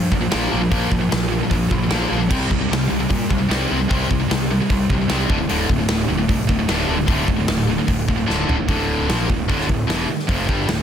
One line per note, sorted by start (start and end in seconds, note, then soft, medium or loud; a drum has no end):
0.12 0.26 A#1 medium
0.12 0.20 A#2 medium
0.12 0.19 F3 medium
0.12 kick medium
0.21 0.30 A#2 medium
0.21 0.31 F3 medium
0.31 0.47 A#1 medium
0.31 0.50 A#2 loud
0.31 0.50 F3 loud
0.31 0.50 A#3 loud
0.31 snare loud
0.31 open hi-hat medium
0.51 0.67 A#1 medium
0.51 0.60 A#2 loud
0.51 0.60 F3 medium
0.51 0.60 A#3 loud
0.61 0.70 A#2 medium
0.61 0.70 F3 medium
0.71 0.86 A#1 loud
0.71 0.90 A#2 medium
0.71 0.90 F3 loud
0.71 0.90 A#3 loud
0.71 kick loud
0.71 open hi-hat medium
0.91 1.06 A#1 medium
0.91 1.01 A#2 medium
0.91 0.99 F3 medium
0.91 kick medium
1.01 1.10 A#2 medium
1.01 1.11 F3 medium
1.11 1.40 A#1 medium
1.11 1.29 A#2 medium
1.11 1.29 F3 medium
1.11 snare loud
1.11 open hi-hat medium
1.28 1.39 A#2 medium
1.28 1.41 F3 medium
1.33 1.42 A#2 medium
1.40 1.49 A#2 medium
1.40 1.52 F3 medium
1.44 1.51 A#2 medium
1.51 1.65 A#1 medium
1.51 1.70 A#2 medium
1.51 1.70 F3 loud
1.51 kick medium
1.51 open hi-hat medium
1.71 1.86 A#1 medium
1.71 1.81 A#2 medium
1.71 1.81 F3 medium
1.71 kick medium
1.78 1.87 A#2 medium
1.78 1.89 F3 medium
1.83 1.91 A#2 medium
1.83 1.91 F3 medium
1.88 2.05 A#1 medium
1.88 2.06 A#2 loud
1.88 2.10 F3 loud
1.88 snare loud
1.88 open hi-hat medium
1.92 2.10 A#2 medium
1.92 2.10 A#3 loud
2.11 2.31 A#1 medium
2.11 2.20 A#2 medium
2.11 2.20 F3 medium
2.11 2.21 A#3 loud
2.22 2.29 A#2 medium
2.22 2.31 F3 medium
2.30 2.45 C2 loud
2.30 2.49 C3 medium
2.30 2.50 G3 loud
2.30 2.50 C4 loud
2.30 kick loud
2.30 crash loud
2.51 2.65 C2 medium
2.51 2.60 C3 medium
2.51 2.60 G3 medium
2.51 kick medium
2.61 2.71 C3 medium
2.61 2.70 G3 medium
2.71 2.85 C2 loud
2.71 2.89 C3 medium
2.71 2.89 G3 medium
2.71 snare loud
2.71 open hi-hat medium
2.90 3.05 C2 medium
2.90 2.99 C3 medium
2.90 2.99 G3 medium
3.00 3.08 C3 medium
3.00 3.09 G3 medium
3.09 3.25 A#2 loud
3.09 3.28 C3 medium
3.09 3.28 G3 medium
3.09 kick medium
3.09 open hi-hat medium
3.29 3.45 C2 medium
3.29 3.37 C3 medium
3.29 3.37 G3 medium
3.29 kick medium
3.38 3.47 C3 medium
3.38 3.48 G3 medium
3.48 3.64 C2 medium
3.48 3.68 C3 loud
3.48 3.68 G3 loud
3.48 3.69 C4 loud
3.48 snare loud
3.48 open hi-hat medium
3.71 3.85 C2 medium
3.71 3.79 C3 medium
3.71 3.79 G3 medium
3.71 3.79 C4 loud
3.81 3.88 C3 medium
3.81 3.88 G3 medium
3.89 4.05 C2 loud
3.89 4.08 C3 medium
3.89 4.08 G3 loud
3.89 4.08 C4 loud
3.89 kick loud
3.89 open hi-hat medium
4.10 4.25 C2 medium
4.10 4.19 C3 medium
4.10 4.18 G3 medium
4.10 kick medium
4.20 4.29 C3 medium
4.20 4.28 G3 medium
4.30 4.59 C2 loud
4.30 4.48 C3 medium
4.30 4.48 G3 medium
4.30 snare loud
4.30 open hi-hat medium
4.51 4.60 C3 medium
4.51 4.60 G3 medium
4.61 4.71 C3 medium
4.61 4.70 G3 medium
4.70 4.84 C2 loud
4.70 4.89 C3 medium
4.70 4.89 G3 medium
4.70 kick medium
4.70 open hi-hat medium
4.90 5.04 C2 medium
4.90 5.00 C3 medium
4.90 5.00 G3 medium
4.90 kick medium
5.01 5.10 C3 medium
5.01 5.10 G3 medium
5.09 5.24 C2 loud
5.09 5.29 C3 medium
5.09 5.29 G3 loud
5.09 5.30 C4 loud
5.09 snare loud
5.09 open hi-hat medium
5.30 5.44 D1 medium
5.30 5.38 D2 medium
5.30 5.39 A2 medium
5.30 5.39 D3 loud
5.30 kick loud
5.40 5.48 D2 medium
5.40 5.49 A2 medium
5.49 5.64 D1 loud
5.49 5.68 D2 medium
5.49 5.68 A2 loud
5.49 5.68 D3 loud
5.49 open hi-hat medium
5.70 5.84 D1 medium
5.70 5.79 D2 medium
5.70 5.79 A2 medium
5.70 kick medium
5.80 5.89 D2 medium
5.80 5.89 A2 medium
5.88 6.03 D1 loud
5.88 6.07 D2 medium
5.88 6.08 A2 medium
5.88 snare loud
5.88 open hi-hat medium
6.10 6.24 D1 medium
6.10 6.18 D2 medium
6.10 6.17 A2 medium
6.18 6.29 D2 medium
6.18 6.29 A2 medium
6.29 6.44 C2 medium
6.29 6.47 D2 medium
6.29 6.47 A2 loud
6.29 kick medium
6.29 open hi-hat medium
6.49 6.63 D1 medium
6.49 6.58 D2 medium
6.49 6.58 A2 medium
6.49 kick medium
6.59 6.67 D2 medium
6.59 6.68 A2 medium
6.68 6.83 D1 loud
6.68 6.86 D2 medium
6.68 6.87 A2 loud
6.68 6.87 D3 loud
6.68 snare loud
6.68 open hi-hat medium
6.88 7.03 D1 medium
6.88 6.96 D2 medium
6.88 6.95 A2 loud
6.88 6.97 D3 loud
6.96 7.05 D2 medium
6.96 7.06 A2 medium
7.06 7.22 D1 loud
7.06 7.25 D2 medium
7.06 7.25 A2 loud
7.06 7.27 D3 loud
7.06 kick loud
7.06 open hi-hat medium
7.26 7.42 D1 medium
7.26 7.36 D2 medium
7.26 7.35 A2 medium
7.26 kick medium
7.31 7.40 D2 medium
7.31 7.39 A2 medium
7.36 7.47 D2 medium
7.36 7.47 A2 medium
7.48 7.77 D1 medium
7.48 7.66 D2 medium
7.48 7.66 A2 medium
7.48 snare loud
7.48 open hi-hat medium
7.67 7.78 D2 medium
7.67 7.77 A2 medium
7.78 7.86 D2 medium
7.78 7.86 A2 medium
7.87 8.03 D1 loud
7.87 8.05 D2 medium
7.87 8.06 A2 medium
7.87 kick medium
7.87 open hi-hat medium
8.08 8.23 D1 medium
8.08 8.17 D2 medium
8.08 8.16 A2 medium
8.08 kick medium
8.18 8.26 D2 medium
8.18 8.26 A2 medium
8.27 8.43 D1 medium
8.27 8.45 D2 medium
8.27 8.45 A2 loud
8.27 8.46 D3 loud
8.27 snare medium
8.46 8.63 D1 medium
8.46 8.56 D2 medium
8.46 8.56 A2 medium
8.46 8.56 D3 loud
8.46 floor tom medium
8.58 8.67 D2 medium
8.58 8.67 A2 medium
8.68 9.06 D1 medium
8.68 9.07 D2 medium
8.68 9.07 A2 loud
8.68 9.08 D3 loud
8.68 kick loud
8.68 open hi-hat medium
9.07 9.27 A#1 loud
9.07 9.26 A#2 medium
9.07 9.26 F3 medium
9.07 9.28 A#3 loud
9.07 snare loud
9.07 open hi-hat medium
9.27 9.48 D1 medium
9.27 9.43 D2 medium
9.27 9.43 A2 medium
9.27 kick medium
9.48 9.67 D1 medium
9.48 9.67 D2 medium
9.48 9.67 A2 medium
9.48 9.68 D3 loud
9.48 kick loud
9.48 open hi-hat medium
9.61 snare soft
9.68 9.87 D1 medium
9.68 9.84 D2 medium
9.68 9.84 A2 medium
9.68 kick medium
9.87 10.07 E1 medium
9.87 10.07 E2 medium
9.87 10.07 B2 medium
9.87 10.07 E3 loud
9.87 snare loud
9.87 open hi-hat medium
10.08 muted distorted electric guitar stroke medium
10.08 muted picked electric bass stroke soft
10.19 snare soft
10.28 10.47 F1 medium
10.28 10.47 F2 medium
10.28 10.47 C3 medium
10.28 10.48 F3 loud
10.28 kick loud
10.28 open hi-hat medium
10.48 10.67 G1 medium
10.48 10.67 G2 medium
10.48 10.67 D3 medium
10.48 10.68 G3 medium
10.48 kick loud
10.67 10.82 D1 medium
10.67 10.82 D2 medium
10.67 10.82 A2 medium
10.67 snare loud
10.67 open hi-hat medium